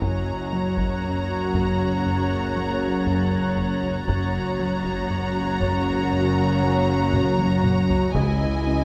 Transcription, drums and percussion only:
0.01 taiko medium
0.78 taiko medium
1.54 taiko medium
3.06 taiko low medium
3.57 taiko medium
3.83 taiko low soft
4.08 taiko medium
4.84 taiko medium
5.61 taiko medium
7.13 taiko mid medium
7.39 taiko high medium
7.64 taiko mid medium
7.89 taiko low medium
8.15 taiko loud

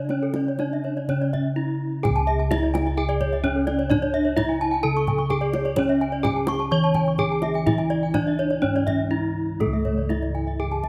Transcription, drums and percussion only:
0.09 kendang high soft
0.34 kendang slap soft
0.34 kendang high soft
0.47 kendang slap soft
0.59 kendang slap soft
0.59 kendang high soft
0.84 kendang slap soft
0.97 kendang slap soft
1.09 kendang low medium
1.22 kendang slap soft
1.33 kendang slap soft
1.33 kendang low soft
2.05 kendang high medium
2.05 kendang low medium
2.52 kendang slap soft
2.52 kendang high medium
2.52 kendang low medium
2.75 kendang slap soft
2.75 kendang high medium
2.87 kendang slap soft
3.10 kendang slap soft
3.21 kendang slap soft
3.21 kendang low medium
3.33 kendang slap soft
3.44 kendang slap soft
3.44 kendang low medium
3.67 kendang high medium
3.79 kendang slap soft
3.91 kendang high medium
3.91 kendang low medium
4.37 kendang slap soft
4.37 kendang high medium
4.37 kendang low medium
4.61 kendang slap soft
4.73 kendang slap soft
4.97 kendang slap soft
5.07 kendang slap soft
5.07 kendang low medium
5.18 kendang slap soft
5.30 kendang slap soft
5.30 kendang low medium
5.53 kendang high medium
5.66 kendang slap soft
5.76 kendang high medium
5.76 kendang low medium
6.25 kendang slap soft
6.25 kendang high medium
6.25 kendang low medium
6.47 kendang slap soft
6.47 kendang high medium
6.59 kendang slap soft
6.94 kendang slap soft
6.94 kendang low medium
7.06 kendang slap soft
7.18 kendang slap soft
7.18 kendang low medium
7.42 kendang high medium
7.54 kendang slap soft
7.67 kendang high medium
7.67 kendang low medium
7.78 kendang slap soft
7.91 kendang slap soft
8.14 kendang slap soft
8.14 kendang high medium
8.14 kendang low medium
8.39 kendang slap soft
8.50 kendang slap soft
8.76 kendang slap soft
8.87 kendang slap soft
8.87 kendang low medium
9.61 kendang high soft
9.61 kendang low medium
9.85 kendang slap soft
9.85 kendang low soft
10.10 kendang slap soft
10.10 kendang high soft
10.23 kendang slap soft
10.35 kendang slap soft
10.72 kendang slap soft
10.84 kendang slap soft
10.84 kendang low soft

